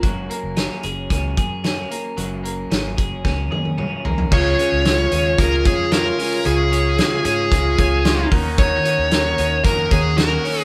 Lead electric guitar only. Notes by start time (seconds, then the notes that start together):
4.33 C#5
5.39 A#4
5.67 G#4
5.92 A#4
6.46 G#4
7.25 G#4
8.59 C#5
9.64 A#4
9.92 G#4
10.18 A#4
10.61 G#4